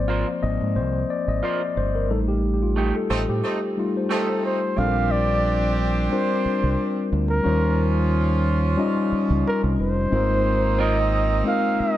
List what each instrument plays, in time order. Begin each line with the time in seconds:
Already playing: fingered electric bass G#1, tine electric piano F3 A#3 C4 C5 D5
0.08 clean electric guitar F4 A#4 C5
0.42 fingered electric bass G#1, tine electric piano F3 A#3 C4 D#5
0.61 fingered electric bass G#2
0.76 fingered electric bass C2, tine electric piano C5
1.10 tine electric piano D5
1.28 fingered electric bass G#1, tine electric piano D#5
1.43 clean electric guitar F4 A#4 C5, tine electric piano D5
1.77 fingered electric bass G1, tine electric piano C5
1.95 tine electric piano A#4
2.09 fingered electric bass A1, tine electric piano G3 A3 D#4 A4
2.28 tine electric piano G4
2.54 tine electric piano G4
2.62 tine electric piano F4
2.76 clean electric guitar A3 D#4 G4
2.96 tine electric piano A4
3.10 fingered electric bass A1, horn section A3 C4 D#4
3.29 fingered electric bass A2, tine electric piano G4
3.44 horn section A3 C4 D#4
3.77 tine electric piano G3 A3 D#4 F4
3.97 tine electric piano C5
4.09 clean electric guitar A3 D#4 G4, horn section A3 C4 D#4, flugelhorn A4
4.45 flugelhorn C5
4.77 fingered electric bass A#1, tine electric piano G3 C4 D4 F4 A4, horn section C4 D4 G4, flugelhorn F5
4.86 tine electric piano A#4
5.11 flugelhorn D5
6.09 tine electric piano G3 C4 D4 F4 A#4, flugelhorn C5
6.46 muted fingered electric bass stroke
6.64 fingered electric bass C2
7.13 fingered electric bass D2
7.29 flugelhorn A#4
7.43 fingered electric bass D#2, horn section F3 C#4 F4, tine electric piano G3 C#4 D#4 F4 C5
8.77 tine electric piano G3 C#4 D#4 F4 D#5
9.12 muted fingered electric bass stroke
9.30 fingered electric bass C#2
9.48 flugelhorn A#4
9.64 fingered electric bass C2
9.79 fingered electric bass F1, flugelhorn C5
10.11 fingered electric bass G#1, tine electric piano G#3 C4 D#4 F4 A#4, horn section A#3 C4 D#4
10.79 clean electric guitar C4 F4 A#4, flugelhorn D#5
11.44 tine electric piano G#3 C4 D#4 F4 A#4, flugelhorn F5
11.80 flugelhorn D#5, muted fingered electric bass stroke